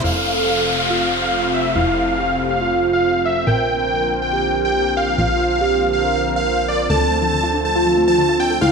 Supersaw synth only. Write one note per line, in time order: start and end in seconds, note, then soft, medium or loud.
0.04 0.30 F5 loud
0.36 0.71 F5 loud
0.79 1.14 F5 medium
1.22 1.48 F5 medium
1.54 1.72 E5 medium
1.75 2.02 F5 loud
2.08 2.43 F5 medium
2.50 2.86 F5 medium
2.93 3.20 F5 medium
3.25 3.43 E5 medium
3.47 3.73 G5 loud
3.79 4.14 G5 medium
4.22 4.57 G5 medium
4.65 4.91 G5 medium
4.97 5.15 F5 medium
5.18 5.45 F5 loud
5.50 5.86 F5 medium
5.93 6.29 F5 medium
6.36 6.63 F5 medium
6.68 6.86 D5 medium
6.90 7.16 A5 loud
7.22 7.57 A5 loud
7.65 8.00 A5 medium
8.08 8.34 A5 medium
8.40 8.57 G5 medium
8.61 8.72 F5 loud